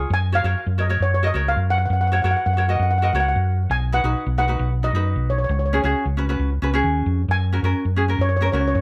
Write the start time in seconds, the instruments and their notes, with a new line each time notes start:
0.10 fingered electric bass F#2, steel pan G#5
0.32 ukulele F#4 A#4 C#5, steel pan F5
0.44 fingered electric bass F#2, ukulele F#4 A#4 C#5
0.67 fingered electric bass F#2
0.78 ukulele F#4 A#4 C#5, steel pan D#5
0.89 ukulele F#4 A#4 C#5
1.00 fingered electric bass F#2, steel pan C#5
1.14 steel pan C#5
1.23 ukulele F#4 A#4 D#5
1.27 steel pan D#5
1.34 fingered electric bass C#2, ukulele F#4 A#4 C#5
1.48 steel pan F5
1.56 fingered electric bass F#2
1.70 steel pan F#5
1.78 steel pan F#5
1.86 steel pan F#5
1.90 fingered electric bass F#2, steel pan F#5
2.01 steel pan F#5
2.07 steel pan F#5
2.12 ukulele F#4 A#4 C#5, steel pan F#5
2.22 fingered electric bass F#2, ukulele F#4 A#4 C#5, steel pan F#5
2.31 steel pan F#5
2.37 steel pan F#5
2.46 fingered electric bass F#2, steel pan F#5
2.53 ukulele F#4, steel pan F#5
2.58 ukulele A#4 C#5, steel pan F#5
2.68 ukulele F#4 A#4 D#5, steel pan F#5
2.75 steel pan F#5
2.79 fingered electric bass F#2, steel pan F#5
2.91 steel pan F#5
2.98 ukulele F#4, steel pan F#5
3.03 ukulele A#4 D#5, steel pan F#5
3.13 fingered electric bass C#2, ukulele F#4 A#4 C#5, steel pan F#5
3.20 steel pan F#5
3.29 steel pan F#5
3.36 fingered electric bass F#2
3.70 fingered electric bass B1, steel pan G#5
3.92 ukulele D#4 F#4 B4, steel pan F#5
4.04 fingered electric bass B1, ukulele D#4 F#4 B4
4.26 fingered electric bass B1
4.38 ukulele D#4 F#4 B4, steel pan F#5
4.48 ukulele D#4 F#4 B4
4.59 fingered electric bass B1
4.83 ukulele D#4 F#4 B4, steel pan D#5
4.93 fingered electric bass F#2, ukulele D#4 F#4 B4
5.16 fingered electric bass B1
5.30 steel pan C#5
5.38 steel pan C#5
5.44 steel pan C#5
5.49 fingered electric bass C#2, steel pan C#5
5.59 steel pan C#5
5.66 steel pan C#5
5.73 ukulele C#4 F#4 G#4, steel pan C#5
5.82 fingered electric bass C#2, ukulele C#4 F#4 G#4, steel pan C#5
6.06 fingered electric bass C#2
6.17 ukulele C#4 F#4 B4
6.29 ukulele C#4 F#4 B4
6.39 fingered electric bass C#2
6.62 fingered electric bass C#2, ukulele C#4 F#4 B4
6.74 ukulele C#4 F#4 G#4
6.83 fingered electric bass D#2
7.06 fingered electric bass F2
7.28 fingered electric bass F#2, steel pan G#5
7.52 ukulele C#4 F#4 A#4
7.63 fingered electric bass F#2, ukulele C#4 F#4 A#4
7.85 fingered electric bass F#2
7.96 ukulele C#4 F#4 G#4
8.08 ukulele C#4 F#4 A#4
8.19 fingered electric bass F#2, steel pan C#5
8.29 steel pan C#5
8.37 steel pan C#5
8.41 ukulele C#4 F#4 A#4
8.45 steel pan C#5
8.52 fingered electric bass C#2, ukulele C#4 F#4 A#4, steel pan C#5
8.61 steel pan C#5
8.68 steel pan C#5
8.75 fingered electric bass F#2, steel pan C#5